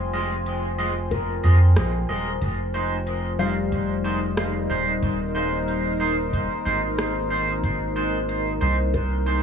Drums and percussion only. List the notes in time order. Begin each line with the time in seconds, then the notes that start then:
0.14 closed hi-hat
0.46 closed hi-hat
0.79 closed hi-hat
1.11 kick, closed hi-hat
1.44 closed hi-hat
1.76 cross-stick, closed hi-hat
2.42 kick, closed hi-hat
2.74 closed hi-hat
3.07 closed hi-hat
3.39 closed hi-hat
3.72 kick, closed hi-hat
4.05 closed hi-hat
4.37 cross-stick, closed hi-hat
5.03 kick, closed hi-hat
5.35 closed hi-hat
5.68 closed hi-hat
6.01 closed hi-hat
6.33 kick, closed hi-hat
6.66 closed hi-hat
6.99 cross-stick, closed hi-hat
7.64 kick, closed hi-hat
7.96 closed hi-hat
8.29 closed hi-hat
8.61 closed hi-hat
8.94 kick, closed hi-hat
9.27 closed hi-hat